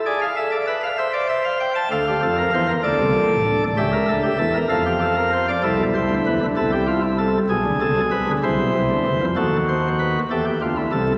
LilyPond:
<<
  \new Staff \with { instrumentName = "Pipe organ" } { \time 6/8 \key d \minor \tempo 4. = 64 << { d''16 f''16 e''16 d''16 e''16 f''16 e''16 d''16 e''16 f''16 g''16 a''16 | f''4. d''4. | e''4. f''4. | a'8 c''8 b'8 a'16 g'16 f'16 e'16 a'8 |
gis'8 a'8 b'8 c''4. | a'8 c''8 b'8 a'16 g'16 f'16 e'16 a'8 | } \\ { gis'8 a'8 b'8 c''4. | a'16 g'16 a'16 bes'16 c''16 bes'16 a'4. | g'16 bes'16 a'16 g'16 a'16 bes'16 a'16 g'16 a'16 bes'16 c''16 d''16 | e'4. e'4. |
r4. e'4. | fis'4. g'4. | } >> }
  \new Staff \with { instrumentName = "Pipe organ" } { \clef bass \time 6/8 \key d \minor r2. | <d, d>8 <f, f>8 <e, e>8 <d, d>16 <c, c>16 <bes,, bes,>16 <a,, a,>16 <d, d>8 | <cis, cis>8 <d, d>8 <e, e>8 <f, f>4. | <c, c>16 <b,, b,>16 <c, c>16 <d, d>16 <e, e>16 <d, d>16 <c, c>4. |
<b,, b,>16 <d, d>16 <c, c>16 <b,, b,>16 <c, c>16 <d, d>16 <c, c>16 <b,, b,>16 <c, c>16 <d, d>16 <e, e>16 <f, f>16 | <dis, dis>4. <e, e>8 <d, d>8 <c, c>8 | }
>>